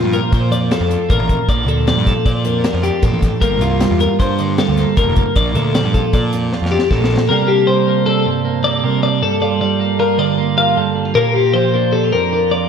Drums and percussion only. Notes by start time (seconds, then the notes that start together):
0.13 closed hi-hat
0.32 kick, closed hi-hat
0.52 closed hi-hat
0.71 snare, closed hi-hat
0.91 closed hi-hat
1.10 kick, closed hi-hat
1.29 kick, closed hi-hat
1.49 kick, closed hi-hat
1.68 closed hi-hat
1.87 snare, closed hi-hat
2.07 kick, snare, closed hi-hat
2.26 kick, closed hi-hat
2.45 closed hi-hat
2.64 snare, closed hi-hat
2.84 closed hi-hat
3.03 kick, snare, closed hi-hat
3.22 kick, snare, closed hi-hat
3.42 kick, closed hi-hat
3.61 closed hi-hat
3.81 snare, closed hi-hat
4.00 closed hi-hat
4.20 kick, snare, closed hi-hat
4.39 closed hi-hat
4.58 snare, closed hi-hat
4.77 snare, closed hi-hat
4.97 kick, closed hi-hat
5.16 kick, closed hi-hat
5.36 kick, closed hi-hat
5.55 closed hi-hat
5.75 snare, closed hi-hat
5.94 kick, closed hi-hat
6.13 kick, closed hi-hat
6.33 closed hi-hat
6.52 snare
6.66 snare
6.79 snare
6.91 kick, snare
7.04 snare
7.18 snare